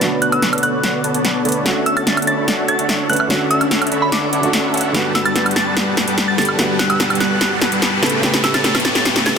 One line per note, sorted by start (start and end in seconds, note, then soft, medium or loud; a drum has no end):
0.00 1.44 D3 medium
0.00 4.91 D3 medium
0.00 1.45 A3 medium
0.00 0.02 B3 medium
0.00 1.62 B3 medium
0.00 0.19 B3 loud
0.00 1.43 B3 medium
0.00 0.03 F#4 medium
0.00 1.44 F#4 loud
0.00 1.62 A4 medium
0.00 1.46 B4 medium
0.00 0.19 B4 medium
0.00 0.19 C#5 medium
0.00 0.19 D5 medium
0.00 0.19 A5 loud
0.00 snare soft
0.00 closed hi-hat medium
0.00 riser medium
0.22 0.31 B3 medium
0.22 0.31 C#5 medium
0.22 0.31 D5 medium
0.22 0.31 A5 loud
0.22 0.30 F#6 medium
0.22 closed hi-hat medium
0.32 0.40 B3 loud
0.32 0.40 B4 medium
0.32 0.40 C#5 medium
0.32 0.40 D5 medium
0.32 0.40 A5 loud
0.32 0.43 E6 medium
0.32 closed hi-hat medium
0.32 high woodblock medium
0.42 0.60 B3 medium
0.42 0.60 B4 medium
0.42 0.60 C#5 medium
0.42 0.60 D5 medium
0.42 0.60 A5 medium
0.42 snare medium
0.42 closed hi-hat medium
0.53 closed hi-hat soft
0.53 high woodblock medium
0.58 closed hi-hat medium
0.63 0.81 B3 medium
0.63 0.81 B4 medium
0.63 0.81 C#5 medium
0.63 0.81 D5 medium
0.63 0.81 C#6 loud
0.63 1.21 F#6 medium
0.63 closed hi-hat medium
0.83 1.02 B3 medium
0.83 1.02 B4 medium
0.83 1.02 C#5 medium
0.83 1.02 D5 medium
0.83 1.02 F#5 medium
0.83 snare medium
0.83 closed hi-hat medium
1.04 1.12 B3 medium
1.04 1.12 B4 medium
1.04 1.12 C#5 medium
1.04 1.12 D5 medium
1.04 1.12 A5 loud
1.04 closed hi-hat medium
1.14 1.23 B3 medium
1.14 1.23 B4 medium
1.14 1.23 C#5 medium
1.14 1.23 D5 medium
1.14 1.23 A5 loud
1.14 closed hi-hat medium
1.24 1.43 B3 medium
1.24 1.43 B4 medium
1.24 1.43 C#5 medium
1.24 1.43 D5 medium
1.24 1.43 A5 loud
1.24 snare medium
1.24 closed hi-hat medium
1.44 1.62 D3 medium
1.44 1.63 A3 medium
1.44 1.63 B3 loud
1.44 1.63 B3 medium
1.44 1.63 B4 medium
1.44 1.64 B4 medium
1.44 1.63 C#5 medium
1.44 1.63 D5 medium
1.44 1.63 A5 loud
1.44 closed hi-hat soft
1.49 closed hi-hat medium
1.52 closed hi-hat medium
1.64 3.06 D3 medium
1.64 3.07 A3 medium
1.64 4.91 C#4 medium
1.64 3.07 C#4 medium
1.64 1.84 D4 loud
1.64 7.99 F#4 medium
1.64 3.08 F#4 loud
1.64 1.84 A4 medium
1.64 1.84 C#5 medium
1.64 1.84 E5 medium
1.64 1.84 F#5 loud
1.64 snare medium
1.64 closed hi-hat medium
1.86 1.95 D4 medium
1.86 1.95 A4 medium
1.86 1.95 C#5 medium
1.86 1.95 E5 medium
1.86 1.95 F#5 loud
1.86 1.95 E6 medium
1.86 closed hi-hat medium
1.97 2.04 D4 loud
1.97 2.04 A4 medium
1.97 2.04 C#5 medium
1.97 2.04 E5 medium
1.97 2.04 F#5 loud
1.97 2.08 A6 medium
1.97 closed hi-hat medium
1.97 high woodblock medium
2.07 2.25 D4 medium
2.07 2.25 A4 medium
2.07 2.25 C#5 medium
2.07 2.25 E5 medium
2.07 2.25 F#5 medium
2.07 snare medium
2.07 closed hi-hat medium
2.17 closed hi-hat soft
2.17 high woodblock medium
2.22 closed hi-hat medium
2.27 2.45 D4 medium
2.27 2.45 A4 medium
2.27 2.45 C#5 medium
2.27 2.45 E5 medium
2.27 2.45 B5 loud
2.27 2.39 A6 medium
2.27 closed hi-hat medium
2.48 2.66 D4 medium
2.48 2.66 A4 medium
2.48 2.66 C#5 medium
2.48 2.66 F#5 medium
2.48 snare medium
2.48 closed hi-hat medium
2.68 2.76 D4 medium
2.68 2.76 A4 medium
2.68 2.76 C#5 medium
2.68 2.76 E5 medium
2.68 2.76 F#5 loud
2.68 2.80 A6 medium
2.68 closed hi-hat medium
2.79 2.87 D4 loud
2.79 2.87 A4 medium
2.79 2.87 C#5 medium
2.79 2.87 E5 medium
2.79 2.87 F#5 loud
2.79 closed hi-hat medium
2.89 3.07 D4 medium
2.89 3.07 A4 medium
2.89 3.07 C#5 medium
2.89 3.07 E5 medium
2.89 3.07 F#5 loud
2.89 snare medium
2.89 closed hi-hat medium
3.09 3.27 D3 medium
3.09 3.28 A3 medium
3.09 3.28 C#4 medium
3.09 3.28 D4 loud
3.09 3.28 A4 medium
3.09 3.28 B4 medium
3.09 3.28 C#5 medium
3.09 3.28 E5 medium
3.09 3.28 F#5 loud
3.09 3.16 F#6 medium
3.09 closed hi-hat soft
3.13 closed hi-hat medium
3.16 3.26 F#6 medium
3.16 closed hi-hat medium
3.16 high woodblock medium
3.28 4.40 D3 medium
3.28 4.41 A3 medium
3.28 4.42 C#4 medium
3.28 3.48 D4 medium
3.28 3.48 A4 medium
3.28 3.48 C#5 medium
3.28 3.48 E5 medium
3.28 3.48 F#5 loud
3.28 snare medium
3.28 closed hi-hat medium
3.32 4.42 F#4 loud
3.51 3.59 D4 medium
3.51 3.59 A4 medium
3.51 3.59 C#5 medium
3.51 3.59 E5 medium
3.51 3.59 F#5 loud
3.51 3.62 E6 medium
3.51 closed hi-hat medium
3.61 3.69 D4 loud
3.61 3.69 A4 medium
3.61 3.69 C#5 medium
3.61 3.69 E5 medium
3.61 3.69 F#5 loud
3.61 closed hi-hat medium
3.61 high woodblock medium
3.71 3.89 D4 medium
3.71 3.89 A4 medium
3.71 3.89 C#5 medium
3.71 3.89 E5 medium
3.71 3.89 F#5 medium
3.71 snare medium
3.71 closed hi-hat medium
3.82 closed hi-hat soft
3.82 high woodblock medium
3.87 closed hi-hat medium
3.92 4.10 D4 medium
3.92 4.10 A4 medium
3.92 4.10 C#5 medium
3.92 4.10 E5 medium
3.92 4.10 B5 loud
3.92 closed hi-hat medium
4.02 4.10 B5 medium
4.12 4.30 D4 medium
4.12 4.30 A4 medium
4.12 4.30 C#5 medium
4.12 4.30 E5 medium
4.12 4.30 F#5 medium
4.12 4.70 D6 medium
4.12 snare medium
4.12 closed hi-hat medium
4.33 4.41 D4 medium
4.33 4.41 A4 medium
4.33 4.41 C#5 medium
4.33 4.41 E5 medium
4.33 4.41 F#5 medium
4.33 closed hi-hat medium
4.41 4.91 D3 medium
4.41 4.92 A3 medium
4.41 4.92 C#4 medium
4.41 4.52 D4 loud
4.41 4.93 F#4 medium
4.41 4.52 A4 medium
4.41 4.52 C#5 medium
4.41 4.52 E5 medium
4.41 4.52 F#5 loud
4.41 closed hi-hat medium
4.53 4.71 D4 medium
4.53 4.71 A4 medium
4.53 4.71 C#5 medium
4.53 4.71 E5 medium
4.53 4.71 F#5 loud
4.53 snare medium
4.53 closed hi-hat medium
4.74 4.92 D4 loud
4.74 4.92 A4 medium
4.74 4.92 C#5 medium
4.74 4.92 E5 medium
4.74 4.92 F#5 loud
4.74 closed hi-hat soft
4.77 closed hi-hat medium
4.81 closed hi-hat medium
4.92 8.00 B2 medium
4.92 6.35 D3 medium
4.92 6.36 G3 medium
4.92 8.00 G3 medium
4.92 5.13 G3 loud
4.92 6.36 B3 medium
4.92 5.13 G4 medium
4.92 5.13 B4 medium
4.92 5.13 F#5 medium
4.92 5.13 A5 loud
4.92 snare medium
4.92 closed hi-hat medium
4.96 6.37 F#4 loud
5.15 5.24 G3 medium
5.15 5.24 G4 medium
5.15 5.24 B4 medium
5.15 5.24 F#5 medium
5.15 5.24 A5 loud
5.15 5.23 E6 medium
5.15 snare medium
5.15 closed hi-hat medium
5.25 5.33 G3 loud
5.25 5.33 G4 medium
5.25 5.33 B4 medium
5.25 5.33 F#5 medium
5.25 5.33 A5 loud
5.25 5.37 A6 medium
5.25 closed hi-hat medium
5.25 high woodblock medium
5.36 5.54 G3 medium
5.36 5.54 G4 medium
5.36 5.54 B4 medium
5.36 5.54 F#5 medium
5.36 5.54 A5 medium
5.36 snare medium
5.36 closed hi-hat medium
5.46 closed hi-hat soft
5.46 high woodblock medium
5.51 closed hi-hat medium
5.56 5.74 G3 medium
5.56 5.74 G4 medium
5.56 5.74 B4 medium
5.56 5.74 F#5 medium
5.56 5.74 A5 loud
5.56 5.68 A6 medium
5.56 snare medium
5.56 closed hi-hat medium
5.77 5.95 G3 medium
5.77 5.95 G4 medium
5.77 5.95 B4 medium
5.77 5.95 F#5 medium
5.77 5.95 A5 medium
5.77 snare medium
5.77 closed hi-hat medium
5.97 6.05 G3 medium
5.97 6.05 G4 medium
5.97 6.05 B4 medium
5.97 6.05 F#5 medium
5.97 6.05 A5 loud
5.97 snare medium
5.97 closed hi-hat medium
6.07 6.16 G3 loud
6.07 6.16 G4 medium
6.07 6.16 B4 medium
6.07 6.16 F#5 medium
6.07 6.16 A5 loud
6.07 closed hi-hat medium
6.18 6.36 G3 medium
6.18 6.36 G4 medium
6.18 6.36 B4 medium
6.18 6.36 F#5 medium
6.18 6.36 A5 loud
6.18 snare medium
6.18 closed hi-hat medium
6.28 6.35 A6 medium
6.37 6.55 D3 medium
6.37 6.56 G3 medium
6.37 6.56 G3 loud
6.37 6.57 B3 medium
6.37 6.56 G4 medium
6.37 6.57 A4 medium
6.37 6.56 B4 medium
6.37 6.56 F#5 medium
6.37 6.56 A5 loud
6.37 6.45 A6 medium
6.37 snare medium
6.37 closed hi-hat soft
6.42 closed hi-hat medium
6.45 closed hi-hat medium
6.45 high woodblock medium
6.57 7.99 D3 medium
6.57 8.00 G3 medium
6.57 6.77 G3 loud
6.57 8.01 B3 medium
6.57 6.77 G4 medium
6.57 6.77 B4 medium
6.57 6.77 F#5 medium
6.57 6.77 A5 loud
6.57 snare medium
6.57 closed hi-hat medium
6.61 8.01 F#4 loud
6.79 6.88 G3 loud
6.79 6.88 G4 medium
6.79 6.88 B4 medium
6.79 6.88 F#5 medium
6.79 6.88 A5 loud
6.79 6.88 F#6 medium
6.79 snare medium
6.79 closed hi-hat medium
6.90 6.97 G3 loud
6.90 6.97 G4 medium
6.90 6.97 B4 medium
6.90 6.97 F#5 medium
6.90 6.97 A5 loud
6.90 7.01 E6 medium
6.90 closed hi-hat medium
6.90 high woodblock medium
7.00 7.18 G3 medium
7.00 7.18 G4 medium
7.00 7.18 B4 medium
7.00 7.18 F#5 medium
7.00 7.18 A5 medium
7.00 snare medium
7.00 closed hi-hat medium
7.10 closed hi-hat soft
7.10 high woodblock medium
7.15 closed hi-hat medium
7.20 7.39 G3 medium
7.20 7.39 G4 medium
7.20 7.39 B4 medium
7.20 7.39 F#5 medium
7.20 7.39 A5 loud
7.20 7.78 F#6 medium
7.20 snare medium
7.20 closed hi-hat medium
7.41 7.59 G3 medium
7.41 7.59 G4 medium
7.41 7.59 B4 medium
7.41 7.59 F#5 medium
7.41 7.59 A5 medium
7.41 snare medium
7.41 closed hi-hat medium
7.62 7.69 G3 medium
7.62 7.69 G4 medium
7.62 7.69 B4 medium
7.62 7.69 F#5 medium
7.62 7.69 A5 loud
7.62 snare medium
7.62 closed hi-hat medium
7.72 7.81 G3 loud
7.72 7.81 G4 medium
7.72 7.81 B4 medium
7.72 7.81 F#5 medium
7.72 7.81 A5 loud
7.72 closed hi-hat medium
7.82 8.00 G3 medium
7.82 8.00 G4 medium
7.82 8.00 B4 medium
7.82 8.00 F#5 medium
7.82 8.00 A5 loud
7.82 snare medium
7.82 closed hi-hat medium
8.02 8.20 C#3 medium
8.02 9.38 C#3 medium
8.02 8.21 A3 medium
8.02 9.38 A3 medium
8.02 8.21 A3 loud
8.02 9.38 B3 medium
8.02 8.21 B3 medium
8.02 8.21 G4 medium
8.02 9.38 G4 medium
8.02 8.21 B4 medium
8.02 8.21 C#5 medium
8.02 8.21 A5 loud
8.02 snare medium
8.02 closed hi-hat soft
8.06 closed hi-hat medium
8.10 closed hi-hat medium
8.21 9.38 C#3 medium
8.21 9.38 A3 medium
8.21 8.41 A3 loud
8.21 9.38 B3 medium
8.21 8.41 G4 medium
8.21 9.38 G4 loud
8.21 8.41 B4 medium
8.21 8.41 C#5 medium
8.21 8.41 A5 loud
8.21 snare medium
8.21 closed hi-hat medium
8.34 snare medium
8.44 8.53 A3 loud
8.44 8.53 G4 medium
8.44 8.53 B4 medium
8.44 8.53 C#5 medium
8.44 8.53 A5 loud
8.44 8.52 E6 medium
8.44 snare medium
8.44 closed hi-hat medium
8.54 8.62 A3 loud
8.54 8.62 G4 medium
8.54 8.62 B4 medium
8.54 8.62 C#5 medium
8.54 8.62 A5 loud
8.54 8.65 A6 medium
8.54 snare medium
8.54 closed hi-hat medium
8.54 high woodblock medium
8.64 8.82 A3 medium
8.64 8.82 G4 medium
8.64 8.82 B4 medium
8.64 8.82 C#5 medium
8.64 8.82 A5 medium
8.64 snare medium
8.64 closed hi-hat medium
8.75 snare medium
8.75 closed hi-hat soft
8.75 high woodblock medium
8.80 closed hi-hat medium
8.85 9.03 A3 medium
8.85 9.03 G4 medium
8.85 9.03 B4 medium
8.85 9.03 C#5 medium
8.85 9.03 C#6 loud
8.85 8.96 A6 medium
8.85 snare medium
8.85 closed hi-hat medium
8.95 snare medium
9.05 9.23 A3 medium
9.05 9.23 G4 medium
9.05 9.23 B4 medium
9.05 9.23 C#5 medium
9.05 9.23 G5 medium
9.05 snare loud
9.05 closed hi-hat medium
9.16 snare medium
9.26 9.34 A3 medium
9.26 9.34 G4 medium
9.26 9.34 B4 medium
9.26 9.34 C#5 medium
9.26 9.34 A5 loud
9.26 9.37 A6 medium
9.26 snare loud
9.26 closed hi-hat medium